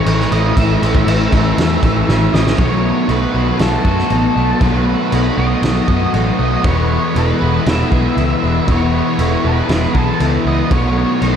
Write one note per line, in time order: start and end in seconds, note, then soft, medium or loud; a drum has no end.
0.00 0.31 E3 medium
0.00 1.07 A3 medium
0.00 0.32 C#5 medium
0.05 0.25 A1 loud
0.05 0.55 A2 medium
0.05 0.33 E3 medium
0.05 0.34 A3 medium
0.05 0.31 A3 medium
0.05 0.31 C#4 medium
0.05 crash medium
0.10 0.31 E4 medium
0.20 snare soft
0.31 0.51 A1 loud
0.31 0.57 E3 medium
0.31 0.58 E3 medium
0.31 0.58 A3 medium
0.31 0.58 A3 loud
0.31 0.59 C#4 loud
0.31 0.60 E4 medium
0.31 0.57 D#5 loud
0.31 crash medium
0.36 0.56 A2 medium
0.56 0.76 A1 medium
0.56 1.06 A2 medium
0.56 1.08 A2 medium
0.56 0.83 E3 medium
0.56 1.07 E3 medium
0.56 0.80 A3 loud
0.56 0.85 A3 medium
0.56 0.83 C#4 medium
0.56 2.30 E5 loud
0.56 kick loud
0.56 crash medium
0.61 0.81 E4 loud
0.81 1.01 A1 medium
0.81 1.57 E3 medium
0.81 1.07 E3 medium
0.81 1.09 A3 medium
0.81 1.10 C#4 medium
0.81 1.11 E4 medium
0.81 crash medium
0.86 1.09 A3 medium
0.95 kick medium
1.07 1.26 A1 medium
1.07 1.58 A2 medium
1.07 1.33 E3 medium
1.07 1.35 E3 medium
1.07 1.30 A3 loud
1.07 1.34 A3 medium
1.07 crash medium
1.11 1.34 C#4 medium
1.11 1.33 E4 medium
1.31 1.51 A1 medium
1.31 2.07 E3 medium
1.31 2.09 A3 medium
1.31 1.60 C#4 medium
1.31 1.61 E4 medium
1.31 kick medium
1.31 crash medium
1.35 1.85 A2 medium
1.35 1.58 E3 medium
1.35 1.59 A3 medium
1.58 1.77 E2 medium
1.58 2.07 E3 medium
1.58 1.86 A3 medium
1.58 1.84 C#4 medium
1.58 snare loud
1.58 crash medium
1.62 1.83 E4 medium
1.83 2.02 A1 medium
1.83 2.10 C#4 medium
1.83 2.11 E4 medium
1.83 kick medium
1.83 crash medium
1.87 2.09 A3 medium
2.07 2.28 A1 medium
2.07 2.57 A2 medium
2.07 2.34 E3 medium
2.07 2.36 E3 medium
2.07 2.32 A3 medium
2.07 2.35 A3 medium
2.07 snare medium
2.12 2.35 C#4 medium
2.12 2.33 E4 medium
2.33 2.53 A1 medium
2.33 2.59 E3 medium
2.33 2.58 E3 medium
2.33 2.57 A3 medium
2.33 2.59 A3 loud
2.33 2.59 C#4 medium
2.33 2.58 E4 loud
2.33 2.58 D#5 loud
2.33 snare medium
2.37 2.58 A2 medium
2.37 2.59 E3 medium
2.47 snare loud
2.58 2.90 B1 medium
2.58 3.08 B2 medium
2.58 3.41 B2 medium
2.58 3.08 D#3 medium
2.58 3.33 F#3 medium
2.58 3.10 F#3 medium
2.58 3.10 A3 medium
2.58 3.11 B3 medium
2.58 3.11 C#5 loud
2.58 kick loud
2.58 crash medium
2.63 3.12 F#4 medium
2.84 3.59 A3 medium
3.08 3.25 B1 medium
3.08 3.59 B2 medium
3.08 3.58 D#3 medium
3.08 3.37 F#3 medium
3.08 3.37 A3 medium
3.08 3.34 B3 medium
3.08 3.36 B3 medium
3.08 4.10 D#4 medium
3.08 3.62 B4 medium
3.08 crash medium
3.13 3.34 F#4 medium
3.34 3.51 B1 medium
3.34 4.60 F#3 medium
3.34 3.60 F#3 medium
3.34 3.60 A3 medium
3.34 3.62 B3 medium
3.34 3.62 F#4 medium
3.59 3.76 B1 medium
3.59 4.09 B2 medium
3.59 4.10 D#3 medium
3.59 4.11 F#3 medium
3.59 3.87 A3 medium
3.59 3.87 B3 medium
3.59 4.13 B3 loud
3.59 3.84 F#4 medium
3.59 4.61 A4 medium
3.59 snare loud
3.59 crash medium
3.85 4.01 F#2 medium
3.85 4.38 A3 medium
3.85 4.37 B3 medium
3.85 4.34 F#4 medium
3.85 kick medium
3.99 snare soft
4.10 4.27 A1 loud
4.10 4.60 B2 medium
4.10 4.61 F#3 medium
4.10 4.64 B3 medium
4.10 5.11 D#4 medium
4.10 crash soft
4.35 4.53 B1 medium
4.35 4.61 A3 medium
4.35 4.63 B3 medium
4.35 4.62 F#4 medium
4.60 4.94 B1 loud
4.60 5.37 B2 medium
4.60 5.10 B2 medium
4.60 5.10 D#3 medium
4.60 5.37 F#3 medium
4.60 5.11 F#3 medium
4.60 5.11 A3 loud
4.60 5.13 B3 medium
4.60 5.14 F#4 medium
4.60 5.40 B4 loud
4.60 kick loud
4.60 crash medium
4.88 5.62 A3 medium
5.11 5.29 B1 medium
5.11 5.61 B2 medium
5.11 5.62 D#3 medium
5.11 5.39 F#3 medium
5.11 5.39 A3 medium
5.11 5.37 B3 medium
5.11 5.39 B3 medium
5.11 6.12 D#4 medium
5.11 crash medium
5.15 5.36 F#4 medium
5.37 5.54 B1 medium
5.37 6.65 F#3 medium
5.37 5.63 F#3 medium
5.37 5.63 A3 medium
5.37 5.66 B3 medium
5.37 5.65 B3 medium
5.37 5.65 F#4 medium
5.37 6.10 D#5 loud
5.62 5.79 B1 medium
5.62 6.12 B2 medium
5.62 6.14 D#3 medium
5.62 6.14 F#3 loud
5.62 5.91 A3 medium
5.62 5.90 B3 medium
5.62 6.16 B3 loud
5.62 snare loud
5.62 crash medium
5.66 5.87 F#4 medium
5.88 6.04 F#2 medium
5.88 6.41 B3 medium
5.88 6.38 F#4 medium
5.88 kick medium
5.92 6.41 A3 medium
6.13 6.30 A1 medium
6.13 6.63 B2 medium
6.13 6.64 F#3 medium
6.13 9.66 B3 medium
6.13 6.65 D#4 medium
6.13 crash medium
6.39 6.55 B1 loud
6.39 6.65 A3 medium
6.39 6.67 B3 medium
6.39 6.63 F#4 medium
6.39 6.64 D#5 loud
6.64 6.97 E1 loud
6.64 7.14 E2 medium
6.64 8.67 E2 medium
6.64 7.41 B2 loud
6.64 7.16 B2 medium
6.64 7.15 E3 medium
6.64 7.18 E3 medium
6.64 7.16 G#3 medium
6.64 7.17 B3 medium
6.64 7.18 E4 loud
6.64 7.17 C#5 loud
6.64 kick loud
6.64 crash soft
6.91 7.42 B3 medium
7.15 7.32 E1 medium
7.15 7.66 E2 medium
7.15 7.42 B2 medium
7.15 7.43 E3 medium
7.15 7.40 E3 medium
7.15 7.43 G#3 medium
7.15 7.42 B3 medium
7.15 7.40 E4 medium
7.15 7.69 B4 medium
7.15 crash medium
7.41 7.58 E1 medium
7.41 7.67 B2 medium
7.41 7.68 E3 medium
7.41 7.65 E3 medium
7.41 7.66 G#3 medium
7.41 7.68 B3 medium
7.41 7.68 E4 medium
7.66 7.83 E1 medium
7.66 8.16 E2 loud
7.66 8.17 B2 loud
7.66 7.93 E3 medium
7.66 8.19 E3 loud
7.66 7.93 G#3 medium
7.66 7.92 B3 medium
7.66 7.90 E4 medium
7.66 8.71 E5 loud
7.66 snare loud
7.66 crash medium
7.91 8.08 B1 medium
7.91 8.45 E3 medium
7.91 8.44 G#3 medium
7.91 8.43 B3 medium
7.91 8.41 E4 medium
7.91 9.19 G#4 medium
7.91 kick medium
8.17 8.33 C#2 loud
8.17 8.67 E2 medium
8.17 8.68 B2 medium
8.17 8.70 E3 medium
8.17 9.17 E4 medium
8.17 crash soft
8.42 8.59 E1 medium
8.42 8.67 E3 medium
8.42 8.68 G#3 medium
8.42 8.70 B3 medium
8.42 8.69 E4 medium
8.67 9.00 E1 loud
8.67 9.44 E2 medium
8.67 9.17 E2 medium
8.67 9.44 B2 medium
8.67 9.18 B2 medium
8.67 9.16 E3 medium
8.67 9.20 E3 medium
8.67 9.18 G#3 medium
8.67 9.20 B3 medium
8.67 9.20 E4 loud
8.67 9.48 C#5 loud
8.67 kick loud
8.67 crash medium
8.94 9.44 B3 medium
9.18 9.35 E1 medium
9.18 9.67 E2 medium
9.18 9.46 B2 medium
9.18 9.45 E3 medium
9.18 9.42 E3 medium
9.18 9.44 G#3 medium
9.18 9.44 B3 medium
9.18 9.42 E4 medium
9.18 crash medium
9.43 9.61 E1 medium
9.43 9.69 B2 medium
9.43 9.70 E3 medium
9.43 9.68 E3 medium
9.43 9.70 G#3 medium
9.43 9.72 B3 medium
9.43 9.72 E4 medium
9.43 9.99 B4 medium
9.68 9.85 E1 medium
9.68 10.18 E2 medium
9.68 10.20 B2 medium
9.68 9.97 E3 medium
9.68 10.22 E3 loud
9.68 9.96 G#3 medium
9.68 9.96 B3 medium
9.68 snare loud
9.68 crash medium
9.73 9.94 E4 medium
9.95 10.11 B1 loud
9.95 10.49 E3 medium
9.95 10.48 G#3 medium
9.95 10.47 B3 medium
9.95 10.45 E4 medium
9.95 10.72 G#4 medium
9.95 kick medium
9.99 10.18 A4 medium
10.20 10.36 C#2 loud
10.20 10.69 E2 medium
10.20 10.70 B2 medium
10.20 10.71 E3 medium
10.20 10.72 E4 medium
10.20 crash medium
10.45 10.62 C#2 medium
10.45 10.71 G#3 medium
10.45 10.73 B3 medium
10.45 10.70 E4 medium
10.45 10.71 D#5 loud
10.50 10.71 E3 medium
10.71 11.03 B1 loud
10.71 11.36 B2 medium
10.71 11.21 B2 medium
10.71 11.21 D#3 medium
10.71 11.36 F#3 medium
10.71 11.22 F#3 medium
10.71 11.23 A3 medium
10.71 11.24 B3 medium
10.71 11.25 F#4 loud
10.71 11.24 C#5 loud
10.71 kick loud
10.71 crash medium
10.98 11.36 B3 medium
11.20 11.36 B1 medium
11.20 11.36 B2 medium
11.20 11.36 D#3 medium
11.20 11.36 F#3 medium
11.20 11.36 A3 medium
11.20 11.36 D#4 medium
11.20 11.36 B4 medium
11.20 crash medium
11.24 11.36 B3 medium
11.24 11.36 F#4 medium